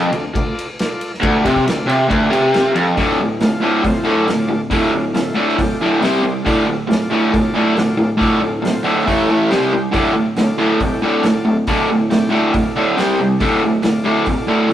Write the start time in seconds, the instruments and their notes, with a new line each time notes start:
Already playing: overdriven electric guitar F2, transistor combo organ F4 A4 D5
0.12 overdriven electric guitar D2, ride
0.34 overdriven electric guitar D2, transistor combo organ F4 A4 D5, kick, ride
0.59 ride
0.79 transistor combo organ F4 A4 D5, snare, ride
1.01 ride
1.14 snare
1.21 overdriven electric guitar D2, transistor combo organ F4 A4, kick, ride
1.26 transistor combo organ D5
1.45 overdriven electric guitar C3, kick, ride
1.56 kick
1.67 overdriven electric guitar D2, transistor combo organ F4 A4 D5, snare, ride
1.87 overdriven electric guitar C3, transistor combo organ F5, ride
2.09 overdriven electric guitar D2, transistor combo organ F4 A4 D5 G5, kick, ride
2.31 overdriven electric guitar C3, ride
2.35 transistor combo organ A5
2.53 transistor combo organ F4 A4 F5 G5, snare, ride
2.75 overdriven electric guitar F2, transistor combo organ A5, ride
2.94 overdriven electric guitar D2 A2, transistor combo organ F4 A4 D5, kick, open hi-hat
2.98 overdriven electric guitar D3
3.20 overdriven electric guitar D2 A2
3.40 overdriven electric guitar D2 A2, transistor combo organ F4 A4, snare, open hi-hat
3.45 transistor combo organ F5
3.61 overdriven electric guitar D2 A2 D3
3.82 overdriven electric guitar D2 A2, transistor combo organ F4 A4 C5, kick, open hi-hat
4.04 overdriven electric guitar D2 A2 D3
4.26 overdriven electric guitar D2 A2, transistor combo organ F4 A4 D5, snare, open hi-hat
4.48 overdriven electric guitar D2 A2
4.70 overdriven electric guitar D2 A2 D3, transistor combo organ F4 A4 D5, kick, open hi-hat
4.92 overdriven electric guitar D2 A2
5.14 overdriven electric guitar D2 A2, transistor combo organ F4 A4 E5, snare, open hi-hat
5.34 overdriven electric guitar D2 A2 D3, transistor combo organ A5
5.49 transistor combo organ G5, snare
5.53 transistor combo organ F4 A4 D5
5.58 overdriven electric guitar D2 A2, kick, open hi-hat
5.78 overdriven electric guitar D2 A2, transistor combo organ F5
5.83 overdriven electric guitar D3
5.98 overdriven electric guitar C3, transistor combo organ C4 G4 C5 E5, open hi-hat
6.03 overdriven electric guitar G3 C4, snare
6.20 overdriven electric guitar C3 G3, transistor combo organ D5
6.42 overdriven electric guitar D2 A2 D3, transistor combo organ F4 A4 D5, kick
6.47 open hi-hat
6.67 overdriven electric guitar D2 A2
6.87 overdriven electric guitar D2 A2, transistor combo organ F4 A4 D5, open hi-hat
6.92 snare
7.10 overdriven electric guitar D2 A2 D3
7.31 overdriven electric guitar D2 A2, transistor combo organ F4 A4 D5, kick, open hi-hat
7.54 overdriven electric guitar D2 A2 D3
7.75 overdriven electric guitar D2 A2, transistor combo organ F4 A4 D5, snare, open hi-hat
7.98 overdriven electric guitar D2 A2
8.17 overdriven electric guitar D2 A2 D3, transistor combo organ F4 A4, kick
8.21 transistor combo organ D5, open hi-hat
8.40 overdriven electric guitar D2 A2
8.61 overdriven electric guitar D2 A2, transistor combo organ F4 A4 C5, open hi-hat
8.66 snare
8.83 overdriven electric guitar D2 A2 D3
8.99 snare
9.04 overdriven electric guitar A2 E3 A3, transistor combo organ E4 A4 E5, kick, open hi-hat
9.28 overdriven electric guitar A2 E3 A3
9.49 overdriven electric guitar C3 G3 C4, transistor combo organ G4 C5 G5, snare, open hi-hat
9.73 overdriven electric guitar C3 G3
9.92 overdriven electric guitar D2 A2 D3, transistor combo organ A4 D5 F5, kick, open hi-hat
10.13 overdriven electric guitar D2 A2
10.36 overdriven electric guitar D2 A2, transistor combo organ A4 D5, snare, open hi-hat
10.41 transistor combo organ F5
10.58 overdriven electric guitar D2 A2 D3
10.80 overdriven electric guitar D2 A2, transistor combo organ A4 D5, kick, open hi-hat
10.85 transistor combo organ G5
11.02 overdriven electric guitar D2 A2 D3
11.23 overdriven electric guitar D2 A2, transistor combo organ A4 D5 F5, snare, open hi-hat
11.45 overdriven electric guitar D2 A2
11.67 overdriven electric guitar D2 A2 D3, transistor combo organ A4 D5 F5, kick, open hi-hat
11.90 overdriven electric guitar D2 A2
12.10 overdriven electric guitar D2 A2, transistor combo organ A4 D5 G5, snare, open hi-hat
12.29 overdriven electric guitar D2 A2 D3
12.52 overdriven electric guitar D2 A2, transistor combo organ A4 D5 F5, kick, open hi-hat
12.76 overdriven electric guitar D2 A2 D3
12.95 overdriven electric guitar C3 G3 C4, transistor combo organ G4 C5 G5, open hi-hat
12.99 snare
13.20 overdriven electric guitar C3 G3
13.39 overdriven electric guitar D2 A2 D3, transistor combo organ A4 D5 F5, kick, open hi-hat
13.63 overdriven electric guitar D2 A2
13.82 overdriven electric guitar D2 A2, transistor combo organ A4, snare, open hi-hat
13.87 transistor combo organ D5 F5
14.04 overdriven electric guitar D2 A2 D3
14.26 overdriven electric guitar D2 A2, transistor combo organ A4 D5, kick, open hi-hat
14.30 transistor combo organ F5
14.47 overdriven electric guitar D2 A2 D3
14.68 overdriven electric guitar D2 A2